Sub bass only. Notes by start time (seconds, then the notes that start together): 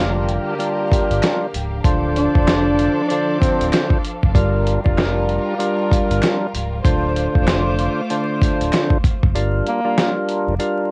Already playing: F1
1.10 G1
1.54 C#1
1.85 D1
2.35 F1
3.60 D1
4.23 F#1
4.35 G1
4.86 F1
6.10 G1
6.54 C#1
6.85 D1
7.36 F1
8.60 D1
9.23 F#1
9.35 G1
10.47 F1